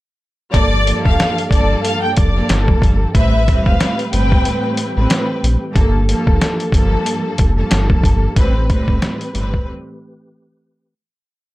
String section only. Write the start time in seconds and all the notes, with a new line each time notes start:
0.51 G2 F3 A#3 A4
0.85 G2 F3 A#3 A4
1.51 G2 F3 A#3 A4
2.34 G2 F3 A#3 A4
3.14 A2 G3 C4 B4
3.47 A2 G3 C4 B4
4.12 A2 G3 C4 B4
4.95 A2 G3 C4 B4
5.73 G2 F3 A#3 A4
6.07 G2 F3 A#3 A4
6.73 G2 F3 A#3 A4
7.56 G2 F3 A#3 A4
8.36 A2 G3 C4 B4
8.69 A2 G3 C4 B4
9.33 A2 G3 C4 B4